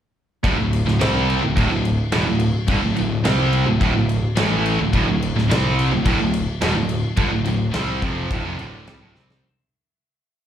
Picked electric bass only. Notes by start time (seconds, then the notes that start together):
0.45 D1
0.60 D1
0.88 D1
1.02 C2
1.44 D1
1.57 D1
1.72 D1
2.14 E1
2.27 D1
2.68 G1
2.83 D1
2.98 D1
3.26 C2
3.67 D1
3.81 D1
3.96 D1
4.40 A1
4.81 D1
4.93 D1
5.09 D1
5.36 D1
5.51 C2
5.92 D1
6.06 D1
6.20 D1
6.62 E1
6.75 D1
7.17 G1
7.33 D1
7.47 D1
7.75 C2
8.03 F1
8.31 D1
8.45 F1
8.60 D1
8.88 C2
9.01 D1
9.16 C2